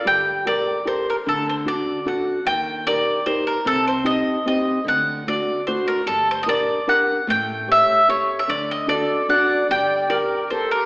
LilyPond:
<<
  \new Staff \with { instrumentName = "Mandolin" } { \time 3/4 \key g \minor \tempo 4 = 149 g''4 d''4 c''8 bes'8 | a'8 c''8 d''4 fis''4 | g''4 d''4 c''8 bes'8 | a'8 c''8 ees''4 ees''4 |
fis''4 d''4 c''8 bes'8 | \tuplet 3/2 { a'8. c''8 ees''16 } d''4 fis''4 | g''4 e''4 cis''8. e''16 | d''8 ees''8 d''4 fis''4 |
g''4 d''4 c''8 bes'8 | }
  \new Staff \with { instrumentName = "Accordion" } { \time 3/4 \key g \minor r2. | r2. | r2. | r2. |
r2. | r2. | r2. | r4 a'4 d''4 |
d''4 bes'4 a'8 g'8 | }
  \new Staff \with { instrumentName = "Nylon-string guitar" } { \time 3/4 \key g \minor g4 <g' a' bes'>4 <g' a' bes'>4 | d4 <d' fis' a'>4 <d' fis' a'>4 | ees4 <ees' g' bes'>4 <ees' g' bes'>4 | c4 <c' ees' g'>4 <c' ees' g'>4 |
d4 <a d' fis'>4 <a d' fis'>4 | g4 <d' g' bes'>4 <d' g' bes'>4 | a4 <g' a' cis''>4 <g' a' cis''>4 | d4 <d' fis' a'>4 <d' fis' a'>4 |
g4 <g' bes'>4 <g' a' bes'>4 | }
  \new Staff \with { instrumentName = "Upright bass" } { \clef bass \time 3/4 \key g \minor g,,2 r4 | d,2 r4 | ees,2 r4 | c,2 r4 |
d,2 r4 | g,,2 r4 | a,,2 r4 | d,2 r4 |
g,,2 r4 | }
>>